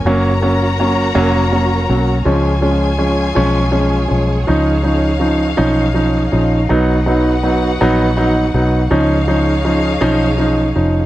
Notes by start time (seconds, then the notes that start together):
0.05 F#1 F#3 A#3 C#4 F#4 A#4 C#5 A#5
0.42 F#3 A#3 C#4
0.80 F#3 A#3 C#4
1.15 F1 F#3 A#3 C#4
1.52 F#3 A#3 C#4
1.89 B1 F#3 A#3 C#4
2.25 C#2 F3 G#3 C#4 F4 G#4 C#5 G#5
2.61 F3 G#3 C#4
2.98 F3 G#3 C#4
3.35 B1 F3 G#3 C#4
3.71 F3 G#3 C#4
4.08 B1 F3 G#3 C#4
4.47 C#2 F3 C#4 D#4 F5
4.83 F3 C#4 D#4
5.20 F3 C#4 D#4
5.57 B1 F3 C#4 D#4
5.94 F3 C#4 D#4
6.32 A#1 F3 C#4 D#4
6.69 B1 F#3 B3 D#4 F#4 B4 F#5
7.06 F#3 B3 D#4
7.43 F#3 B3 D#4
7.81 A#1 F#3 B3 D#4
8.17 F#3 B3 D#4
8.54 B1 F#3 B3 D#4
8.91 C#2 F3 C#4 D#4 G#4 C#5 F5
9.28 F3 C#4 D#4
9.65 F3 C#4 D#4
10.01 B1 F3 C#4 D#4
10.38 F3 C#4 D#4
10.75 F1 F3 C#4 D#4